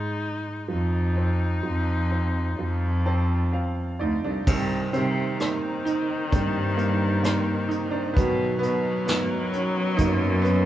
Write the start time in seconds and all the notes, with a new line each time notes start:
Already playing: G#2 G#3 D#4
0.68 F2 F3 D#4
1.17 C4
1.63 F2 F3
2.11 C4
2.59 F2 F3
3.06 C4 A5
3.53 C4 F5
3.99 D2 D#4 D5
4.24 C2 D4
4.47 C2 C3 D#3 G3 C4 C5 A#5, kick, crash
4.93 C3 D#3 G3 C4, closed hi-hat
5.40 A#3 C4 D#4, cross-stick, closed hi-hat
5.85 D#4, closed hi-hat
6.31 G2 D#3 A#3 C4 D4, kick, closed hi-hat
6.35 G3
6.77 A#3, closed hi-hat
7.23 A#3 C4 D#4, cross-stick, closed hi-hat
7.68 D#4, closed hi-hat
7.91 D4
8.14 B2 F#3 B3 D#4 A#4 A#5, kick, closed hi-hat
8.18 D#3 F#3
8.59 B2 B3, closed hi-hat
9.06 B3 D#4 A#4, snare, closed hi-hat
9.53 C#4, closed hi-hat
9.97 F#2 F#3 A#3 D#4 G#5, kick, closed hi-hat
10.01 A#3
10.42 B3, closed hi-hat